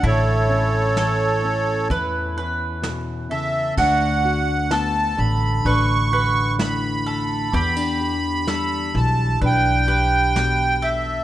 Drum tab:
CC |--------|x-------|--------|
SD |--o---o-|--o---o-|--o---o-|
BD |o---o---|o---o---|o---o---|